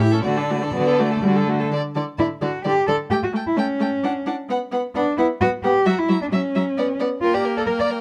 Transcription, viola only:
0.01 0.15 E4 medium
0.13 0.25 C#4 soft
0.25 0.39 A3 medium
0.37 0.52 D4 soft
0.50 0.63 A3 soft
0.62 0.73 D4 medium
0.74 1.01 B3 medium
0.99 1.24 A3 medium
1.22 1.47 G3 medium
1.48 1.71 A3 medium
1.72 1.80 D3 medium
1.96 2.04 D3 medium
2.19 2.27 D3 soft
2.42 2.50 D3 medium
2.65 2.73 D3 medium
2.88 2.96 D3 medium
3.11 3.19 A3 medium
3.33 3.41 A3 medium
3.56 3.64 A3 medium
3.79 3.87 A3 medium
4.03 4.11 D4 medium
4.26 4.34 D4 medium
4.49 4.57 B3 medium
4.71 4.79 B3 medium
4.95 5.03 B3 soft
5.17 5.25 B3 medium
5.41 5.49 B3 medium
5.64 5.72 B3 medium
5.86 5.94 F#3 medium
6.09 6.17 F#3 medium
6.32 6.40 F#3 medium
6.55 6.63 F#3 medium
6.77 6.85 B3 medium
7.00 7.08 B3 medium
7.23 8.01 A#3 medium

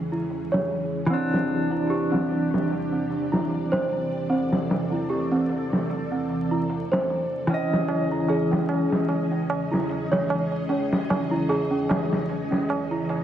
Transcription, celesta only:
0.00 1.12 C#4 medium
0.00 0.12 E4 medium
0.00 1.12 G#4 medium
0.12 0.29 E4 medium
0.52 1.08 C#5 medium
1.10 1.70 C4 medium
1.71 1.88 E4 medium
1.90 2.11 G4 medium
2.12 2.90 C4 medium
2.92 3.30 C4 medium
3.32 3.49 E4 medium
3.72 4.28 C5 medium
4.30 4.90 C4 medium
4.92 5.08 E4 medium
5.10 5.31 G4 medium
5.32 6.10 C4 medium
6.12 6.50 C4 medium
6.51 6.69 E4 medium
6.92 7.48 C5 medium
7.50 8.10 C#4 medium
8.11 8.28 E4 medium
8.29 8.51 G#4 medium
8.52 9.29 C#4 medium
9.31 9.69 C#4 medium
9.71 9.89 E4 medium
10.12 10.68 C#5 medium
10.69 11.29 C#4 medium
11.31 11.48 E4 medium
11.49 11.70 G#4 medium
11.71 12.49 C#4 medium
12.51 12.89 C#4 medium
12.91 13.09 E4 medium

